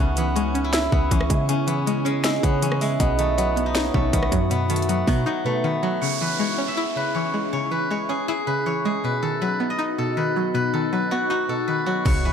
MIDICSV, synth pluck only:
0, 0, Header, 1, 2, 480
1, 0, Start_track
1, 0, Key_signature, 4, "minor"
1, 0, Tempo, 377358
1, 1895, Time_signature, 4, 2, 24, 8
1, 15683, End_track
2, 0, Start_track
2, 0, Title_t, "Synth pluck"
2, 0, Program_c, 0, 84
2, 0, Note_on_c, 0, 49, 101
2, 225, Note_on_c, 0, 52, 85
2, 456, Note_on_c, 0, 56, 92
2, 693, Note_on_c, 0, 61, 85
2, 933, Note_on_c, 0, 64, 107
2, 1156, Note_off_c, 0, 49, 0
2, 1171, Note_on_c, 0, 49, 74
2, 1402, Note_off_c, 0, 52, 0
2, 1418, Note_on_c, 0, 52, 94
2, 1635, Note_off_c, 0, 56, 0
2, 1651, Note_on_c, 0, 56, 81
2, 1881, Note_off_c, 0, 49, 0
2, 1895, Note_off_c, 0, 61, 0
2, 1896, Note_on_c, 0, 49, 97
2, 2111, Note_off_c, 0, 52, 0
2, 2126, Note_on_c, 0, 52, 85
2, 2135, Note_off_c, 0, 64, 0
2, 2357, Note_off_c, 0, 56, 0
2, 2372, Note_on_c, 0, 56, 94
2, 2608, Note_on_c, 0, 61, 89
2, 2855, Note_on_c, 0, 64, 109
2, 3079, Note_off_c, 0, 49, 0
2, 3094, Note_on_c, 0, 49, 81
2, 3323, Note_off_c, 0, 52, 0
2, 3338, Note_on_c, 0, 52, 90
2, 3564, Note_off_c, 0, 56, 0
2, 3579, Note_on_c, 0, 56, 88
2, 3812, Note_off_c, 0, 61, 0
2, 3815, Note_off_c, 0, 49, 0
2, 3815, Note_off_c, 0, 64, 0
2, 3817, Note_off_c, 0, 52, 0
2, 3818, Note_off_c, 0, 56, 0
2, 3818, Note_on_c, 0, 47, 103
2, 4057, Note_on_c, 0, 51, 82
2, 4296, Note_on_c, 0, 54, 98
2, 4530, Note_on_c, 0, 59, 81
2, 4768, Note_on_c, 0, 63, 105
2, 5002, Note_off_c, 0, 47, 0
2, 5017, Note_on_c, 0, 47, 77
2, 5239, Note_off_c, 0, 51, 0
2, 5255, Note_on_c, 0, 51, 93
2, 5483, Note_off_c, 0, 54, 0
2, 5498, Note_on_c, 0, 54, 88
2, 5711, Note_off_c, 0, 47, 0
2, 5726, Note_on_c, 0, 47, 93
2, 5733, Note_off_c, 0, 59, 0
2, 5959, Note_off_c, 0, 51, 0
2, 5972, Note_off_c, 0, 63, 0
2, 5975, Note_on_c, 0, 51, 89
2, 6205, Note_off_c, 0, 54, 0
2, 6220, Note_on_c, 0, 54, 97
2, 6465, Note_on_c, 0, 59, 91
2, 6692, Note_on_c, 0, 63, 106
2, 6911, Note_off_c, 0, 47, 0
2, 6926, Note_on_c, 0, 47, 75
2, 7159, Note_off_c, 0, 51, 0
2, 7175, Note_on_c, 0, 51, 86
2, 7396, Note_off_c, 0, 54, 0
2, 7411, Note_on_c, 0, 54, 85
2, 7651, Note_off_c, 0, 47, 0
2, 7652, Note_on_c, 0, 49, 98
2, 7654, Note_off_c, 0, 54, 0
2, 7654, Note_off_c, 0, 63, 0
2, 7655, Note_off_c, 0, 51, 0
2, 7661, Note_off_c, 0, 59, 0
2, 7902, Note_on_c, 0, 52, 81
2, 8132, Note_on_c, 0, 56, 86
2, 8372, Note_on_c, 0, 61, 82
2, 8614, Note_on_c, 0, 64, 104
2, 8837, Note_off_c, 0, 49, 0
2, 8852, Note_on_c, 0, 49, 75
2, 9084, Note_off_c, 0, 52, 0
2, 9100, Note_on_c, 0, 52, 89
2, 9316, Note_off_c, 0, 56, 0
2, 9331, Note_on_c, 0, 56, 78
2, 9562, Note_off_c, 0, 49, 0
2, 9574, Note_off_c, 0, 61, 0
2, 9577, Note_on_c, 0, 49, 90
2, 9792, Note_off_c, 0, 52, 0
2, 9807, Note_on_c, 0, 52, 79
2, 9815, Note_off_c, 0, 64, 0
2, 10040, Note_off_c, 0, 56, 0
2, 10056, Note_on_c, 0, 56, 93
2, 10290, Note_on_c, 0, 61, 88
2, 10536, Note_on_c, 0, 64, 101
2, 10760, Note_off_c, 0, 49, 0
2, 10775, Note_on_c, 0, 49, 81
2, 11001, Note_off_c, 0, 52, 0
2, 11016, Note_on_c, 0, 52, 85
2, 11242, Note_off_c, 0, 56, 0
2, 11258, Note_on_c, 0, 56, 84
2, 11493, Note_off_c, 0, 61, 0
2, 11496, Note_off_c, 0, 49, 0
2, 11496, Note_off_c, 0, 52, 0
2, 11496, Note_off_c, 0, 64, 0
2, 11497, Note_off_c, 0, 56, 0
2, 11497, Note_on_c, 0, 47, 99
2, 11738, Note_on_c, 0, 51, 76
2, 11975, Note_on_c, 0, 54, 94
2, 12210, Note_on_c, 0, 59, 78
2, 12448, Note_on_c, 0, 63, 105
2, 12683, Note_off_c, 0, 47, 0
2, 12698, Note_on_c, 0, 47, 72
2, 12920, Note_off_c, 0, 51, 0
2, 12936, Note_on_c, 0, 51, 90
2, 13166, Note_off_c, 0, 54, 0
2, 13181, Note_on_c, 0, 54, 88
2, 13395, Note_off_c, 0, 47, 0
2, 13410, Note_on_c, 0, 47, 95
2, 13413, Note_off_c, 0, 59, 0
2, 13643, Note_off_c, 0, 51, 0
2, 13652, Note_off_c, 0, 63, 0
2, 13658, Note_on_c, 0, 51, 86
2, 13884, Note_off_c, 0, 54, 0
2, 13899, Note_on_c, 0, 54, 94
2, 14144, Note_on_c, 0, 59, 90
2, 14373, Note_on_c, 0, 63, 103
2, 14593, Note_off_c, 0, 47, 0
2, 14609, Note_on_c, 0, 47, 77
2, 14842, Note_off_c, 0, 51, 0
2, 14857, Note_on_c, 0, 51, 83
2, 15079, Note_off_c, 0, 54, 0
2, 15094, Note_on_c, 0, 54, 83
2, 15332, Note_off_c, 0, 47, 0
2, 15335, Note_off_c, 0, 54, 0
2, 15335, Note_off_c, 0, 63, 0
2, 15337, Note_off_c, 0, 51, 0
2, 15337, Note_on_c, 0, 49, 99
2, 15340, Note_off_c, 0, 59, 0
2, 15585, Note_on_c, 0, 52, 82
2, 15683, Note_off_c, 0, 49, 0
2, 15683, Note_off_c, 0, 52, 0
2, 15683, End_track
0, 0, End_of_file